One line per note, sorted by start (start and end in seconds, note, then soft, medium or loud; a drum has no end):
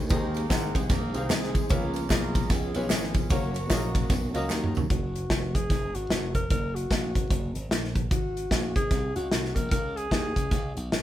0.09 0.45 D#2 loud
0.09 0.71 D#3 medium
0.09 1.69 D#3 medium
0.09 1.69 G#3 medium
0.09 0.72 A#3 medium
0.09 0.38 C4 medium
0.09 1.69 C4 medium
0.09 0.38 D#4 medium
0.09 0.87 D#4 medium
0.09 0.38 G#4 medium
0.09 3.28 G#4 medium
0.09 0.72 A#4 loud
0.09 0.39 C5 medium
0.09 0.39 D#5 medium
0.09 kick loud
0.09 ride medium
0.09 tambourine medium
0.34 ride medium
0.34 tambourine medium
0.49 0.71 G#1 loud
0.49 0.87 C4 medium
0.49 0.87 D#4 medium
0.49 0.88 G#4 medium
0.49 0.88 C5 medium
0.49 0.88 F#5 medium
0.49 kick loud
0.49 snare loud
0.49 clap medium
0.49 ride medium
0.49 tambourine loud
0.75 0.88 C2 loud
0.75 0.90 G#3 medium
0.75 0.90 G#4 loud
0.75 kick loud
0.75 ride medium
0.75 tambourine medium
0.89 1.11 A#1 loud
0.89 1.28 A#3 medium
0.89 1.30 D#4 medium
0.89 1.28 A#4 medium
0.89 kick loud
0.89 snare soft
0.89 clap medium
0.89 ride medium
0.89 tambourine medium
1.14 1.28 C2 medium
1.14 1.50 C4 medium
1.14 1.50 D#4 medium
1.14 1.50 G#4 medium
1.14 1.19 A#4 medium
1.14 1.51 F5 medium
1.14 ride medium
1.14 tambourine medium
1.20 1.53 C5 medium
1.30 1.64 C2 medium
1.30 1.71 G#3 medium
1.30 1.68 C4 medium
1.30 1.68 D#4 medium
1.30 1.71 G#4 medium
1.30 snare loud
1.30 clap medium
1.30 ride medium
1.30 tambourine medium
1.43 snare soft
1.55 kick medium
1.55 ride medium
1.55 tambourine medium
1.69 2.05 C#2 loud
1.69 2.31 C#3 medium
1.69 3.29 F3 medium
1.69 2.09 A#3 loud
1.69 3.29 B3 medium
1.69 1.98 C#4 medium
1.69 4.87 C#4 medium
1.69 1.98 F4 medium
1.69 2.10 F4 medium
1.69 1.98 G#4 medium
1.69 2.09 A#4 loud
1.69 1.99 B4 medium
1.69 1.99 C#5 medium
1.69 kick loud
1.69 ride medium
1.69 tambourine medium
1.94 ride medium
1.94 tambourine soft
2.09 2.45 B1 medium
2.09 2.48 A#3 medium
2.09 2.48 B3 medium
2.09 2.47 C#4 medium
2.09 2.47 F4 medium
2.09 2.50 F4 medium
2.09 2.47 G#4 medium
2.09 2.48 A#4 loud
2.09 2.48 D#5 medium
2.09 kick medium
2.09 snare loud
2.09 clap medium
2.09 ride medium
2.09 tambourine loud
2.35 kick loud
2.35 ride medium
2.35 tambourine medium
2.50 2.71 C#2 medium
2.50 2.88 G#3 medium
2.50 2.90 B3 medium
2.50 2.90 F4 medium
2.50 2.88 G#4 medium
2.50 kick loud
2.50 snare soft
2.50 clap medium
2.50 ride medium
2.50 tambourine medium
2.74 2.88 B1 medium
2.74 3.10 C#4 medium
2.74 3.11 F4 medium
2.74 3.11 G#4 medium
2.74 3.11 B4 medium
2.74 3.11 C#5 medium
2.74 ride medium
2.74 tambourine medium
2.90 3.24 G#1 loud
2.90 3.28 G#3 medium
2.90 3.28 B3 medium
2.90 3.28 F4 medium
2.90 3.28 G#4 medium
2.90 snare loud
2.90 clap medium
2.90 ride medium
2.90 tambourine loud
3.03 snare soft
3.14 kick loud
3.14 ride medium
3.14 tambourine medium
3.30 3.70 F#1 loud
3.30 4.50 F#3 medium
3.30 4.89 F#3 medium
3.30 3.58 A#3 medium
3.30 4.89 A#3 medium
3.30 4.47 A#3 medium
3.30 3.58 C#4 medium
3.30 4.47 C#4 medium
3.30 4.50 F#4 medium
3.30 3.59 F#4 medium
3.30 4.89 A#4 medium
3.30 3.59 A#4 medium
3.30 3.59 C#5 medium
3.30 kick loud
3.30 ride medium
3.30 tambourine medium
3.54 ride medium
3.54 tambourine medium
3.70 4.04 A#1 loud
3.70 4.07 A#3 medium
3.70 4.08 C#4 medium
3.70 4.08 F#4 medium
3.70 3.77 G#4 medium
3.70 4.08 D#5 medium
3.70 kick medium
3.70 snare loud
3.70 clap loud
3.70 ride medium
3.70 tambourine loud
3.76 4.10 A#4 medium
3.95 kick loud
3.95 ride medium
3.95 tambourine medium
4.10 4.31 B1 loud
4.10 kick loud
4.10 snare soft
4.10 clap medium
4.10 ride medium
4.10 tambourine medium
4.34 4.48 C#2 medium
4.34 4.70 A#3 medium
4.34 4.70 C#4 medium
4.34 4.71 F#4 medium
4.34 4.71 A#4 medium
4.34 4.71 D#5 medium
4.34 ride medium
4.34 tambourine medium
4.50 4.85 D#2 medium
4.50 snare medium
4.50 clap medium
4.50 tambourine medium
4.64 mid tom medium
4.75 floor tom loud
4.75 tambourine medium
4.90 5.24 F#1 loud
4.90 5.57 F#4 medium
4.90 kick loud
4.90 closed hi-hat medium
5.16 closed hi-hat medium
5.30 5.64 F1 medium
5.30 kick medium
5.30 snare loud
5.30 closed hi-hat medium
5.55 5.97 G#4 medium
5.55 kick loud
5.55 closed hi-hat medium
5.70 5.91 F#1 medium
5.70 kick loud
5.70 snare soft
5.70 closed hi-hat medium
5.95 6.08 G#1 medium
5.95 6.34 F#4 medium
5.95 closed hi-hat medium
6.10 6.45 F1 medium
6.10 snare loud
6.10 closed hi-hat medium
6.35 6.49 A#4 medium
6.35 kick medium
6.35 closed hi-hat medium
6.50 6.85 F#1 loud
6.50 6.77 A#4 loud
6.50 kick loud
6.50 closed hi-hat medium
6.75 7.56 F#4 medium
6.75 closed hi-hat medium
6.91 7.12 A#1 medium
6.91 kick medium
6.91 snare loud
6.91 closed hi-hat medium
7.15 7.29 G#1 medium
7.15 kick medium
7.15 closed hi-hat medium
7.30 7.52 F#1 loud
7.30 kick loud
7.30 closed hi-hat medium
7.55 7.69 G#1 medium
7.55 closed hi-hat medium
7.71 8.11 A#1 medium
7.71 snare loud
7.71 closed hi-hat medium
7.84 snare soft
7.96 kick medium
7.96 closed hi-hat medium
8.11 8.45 G#1 medium
8.11 8.72 F#4 medium
8.11 kick loud
8.11 closed hi-hat medium
8.37 closed hi-hat medium
8.51 8.72 A#1 loud
8.51 kick medium
8.51 snare loud
8.51 closed hi-hat medium
8.76 8.89 G#1 medium
8.76 9.13 G#4 medium
8.76 kick medium
8.76 closed hi-hat medium
8.91 9.12 C2 medium
8.91 kick loud
8.91 snare soft
8.91 closed hi-hat medium
9.16 9.29 C#2 medium
9.16 9.57 F#4 medium
9.16 closed hi-hat medium
9.31 9.53 C2 medium
9.31 snare loud
9.31 closed hi-hat medium
9.45 snare soft
9.55 9.69 A#1 medium
9.55 9.71 A#4 medium
9.55 kick medium
9.55 closed hi-hat medium
9.71 10.06 C#2 loud
9.71 9.98 A#4 loud
9.71 kick loud
9.71 closed hi-hat medium
9.97 10.77 G#4 medium
9.97 closed hi-hat medium
10.11 10.33 D#2 medium
10.11 kick medium
10.11 snare loud
10.11 closed hi-hat medium
10.36 10.49 C#2 medium
10.36 kick medium
10.36 closed hi-hat medium
10.51 10.73 C#2 medium
10.51 kick loud
10.51 snare soft
10.51 closed hi-hat medium
10.77 10.90 B1 medium
10.77 closed hi-hat medium
10.92 11.02 G#1 medium
10.92 snare loud
10.92 closed hi-hat loud